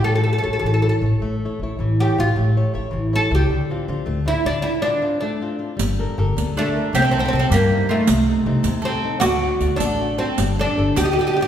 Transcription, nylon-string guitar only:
\new Staff \with { instrumentName = "Nylon-string guitar" } { \time 6/8 \key d \minor \tempo 4. = 104 <a e' a' cis''>8 <e' a' cis''>8 <e' a' cis''>8 e8 <e' a' cis''>8 <e' a' cis''>8 | a8 <e' a' cis''>8 <e' a' cis''>8 e8 <e' a' cis''>8 <e' a' cis''>8 | a8 <e' a' cis''>8 <e' a' cis''>8 e8 <e' a' cis''>8 <e' a' cis''>8 | d8 <c' d' f'>8 <c' d' f'>8 a8 <c' d' f'>8 <c' d' f'>8 |
d8 <c' d' f'>8 <c' d' f'>8 a8 <c' d' f'>8 <c' d' f'>8 | \key g \minor g8 <g' a' bes'>8 <g' a' bes'>8 d8 <g' a' d''>8 <g' a' bes'>8 | c8 <bes c' ees'>8 <bes c' ees'>8 g8 <bes c' ees'>8 <bes c' ees'>8 | c8 <a c' ees'>8 <a c' ees'>8 c8 <a c' ees'>8 <a c' ees'>8 |
d8 <a d' fis'>8 <a d' fis'>8 a8 <a d' fis'>8 <a d' fis'>8 | g8 <d' g' a'>8 <d' g' a'>8 d8 <d' g' a'>8 <d' g' a'>8 | }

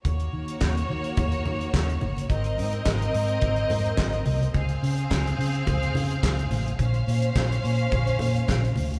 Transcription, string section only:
\new Staff \with { instrumentName = "String section" } { \time 4/4 \key ees \dorian \tempo 4 = 107 <bes ges' des''>1 | <c' bes' ees''>1 | <c' aes' f''>1 | <des' c'' f''>1 | }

